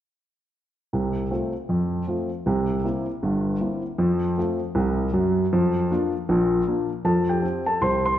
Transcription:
0.93 C2 C3
1.31 A3 C4 F4
1.69 F2 F3
2.07 A3 C4 F4
2.46 C2 C3
2.84 A#3 C4 E4
3.23 G1 G2
3.60 A#3 C4 E4
3.98 F2 F3
4.38 A3 C4 F4
4.75 C2 C3
5.13 F#2 F#3
5.53 F2 F3
5.91 A#3 D4 F4
6.29 A#1 A#2
6.68 A#3 D4 F4
7.04 F2 F3 A4 A5
7.29 G4 G5
7.42 C4 F4
7.66 A4 A5
7.81 C2 C3 C5 C6
8.05 C5 C6

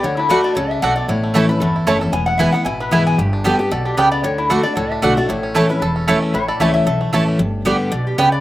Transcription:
0.03 D2 D3 F#4 C#5
0.17 D4 E4
0.29 D2 D3 A3 D4 F#4 A4 D5 F#5
0.44 F#4 D5
0.55 C#2 C#3 A4 C#5
0.70 D4 E5
0.82 B1 B2 A3 F#4 A4 D5 F#5
0.96 A3 D5
1.08 A1 A2 E4 C#5
1.24 A3
1.34 E3 A3 C#4 E4 A4 C#5 A5
1.49 C#4 E4 B4
1.60 G1 E2 A3 A4
1.76 E4
1.87 F#1 E3 A3 C#4 E4 C#5 A5
2.01 C#4 E4 A4
2.12 E1 E2 B3 G#5
2.26 E4 F#5
2.38 E3 G#3 B3 E4 B4 E5 G#5
2.52 B3 E4 F#5
2.65 A1 B2 E4 G#5
2.80 B3 B4
2.91 G#1 E3 G#3 B3 E4 B4 E5 G#5
3.07 B3 G#5
3.18 G1 G2 G4
3.33 D4
3.44 D3 G3 B3 G4 A4 D5 G5
3.59 B3 G4
3.71 B1 B2 A4 D5
3.85 D4 G4
3.97 C#2 C#3 B3 G4 A4 B4 D5 G5
4.12 B3 D5
4.24 D2 D3 F#4 C#5
4.38 D4 E4
4.49 D3 A3 D4 F#4 A4 D5 F#5
4.63 D4 F#4 D5
4.75 C#2 A2 A4 C#5
4.90 D4 E5
5.02 B1 D3 A3 D4 F#4 A4 D5 F#5
5.17 A3 D4 F#4 D5
5.29 A1 A2 E4 C#5
5.43 C#4
5.55 E3 A3 C#4 E4 A4 C#5 A5
5.69 C#4 E4 B4
5.82 E1 E2 A4
5.96 C#4
6.07 E3 A3 C#4 E4 A4 C#5 A5
6.22 A3
6.34 A1 A2 E4 C#5
6.48 A4 D5
6.60 C#2 E3 A3 C#4 E4 C#5 E5 A5
6.74 E4 E5
6.86 B1 E2 A4
7.01 A3
7.13 A1 E3 A3 C#4 E4 A4 C#5 A5
7.28 A3
7.39 G1 G2
7.65 D3 G3 B3 G4 D5 G5
7.92 B1 B2 D5
8.07 G4
8.18 C#2 C#3 B3 G4 B4 D5 G5
8.32 D5

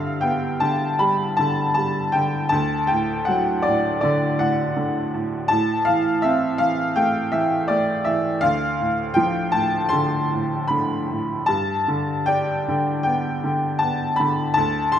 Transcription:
Already playing: G2 D3 E5 F5
0.21 B3 G5
0.60 D3 A5
0.99 G3 B5
1.37 D3 A5
1.74 G3 A5
2.12 D3 G5
2.49 D2 A5
2.87 G5
2.91 A2
3.25 F#3 F#5
3.62 D5
3.67 A2
4.01 D3 D5
4.39 A2 F#5
4.76 D3
5.14 A2
5.48 A2 A5
5.85 E3 F5
6.22 C4 E5
6.58 E3 F5
6.96 A3 G5
7.32 E3 E5
7.68 A3 D5
8.05 E3 E5
8.41 D2 F5
8.80 A2
9.14 F3 G5
9.52 A2 A5
9.89 C6
9.93 D3
10.33 A2
10.68 D3 B5
11.10 A2
11.46 G2 A5
11.88 D3
12.26 D4 G5
12.68 D3
13.03 B3 G5
13.44 D3
13.79 B3 A5
14.16 D3 B5
14.54 D2 A5
14.92 A2 C6

